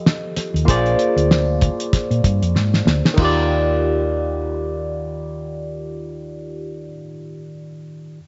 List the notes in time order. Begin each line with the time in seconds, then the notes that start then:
Already playing: F3 F4 G4 A4 D#5
0.06 snare
0.36 muted fingered electric bass stroke, snare, closed hi-hat
0.54 D#2, closed hi-hat
0.65 A#1 A#3 F4 G#4 C5, kick, closed hi-hat
0.70 D5
0.86 closed hi-hat
0.99 closed hi-hat
1.16 D2, closed hi-hat
1.31 snare
1.61 kick, closed hi-hat
1.80 closed hi-hat
1.93 kick, snare, closed hi-hat
2.11 A#2, closed hi-hat
2.24 G2, kick, closed hi-hat
2.42 F2, closed hi-hat
2.55 G#2, snare
2.74 snare
2.85 D2, snare
3.05 snare
3.14 D#3 D#4, crash
3.18 D#2 F4, kick
3.22 G4 D5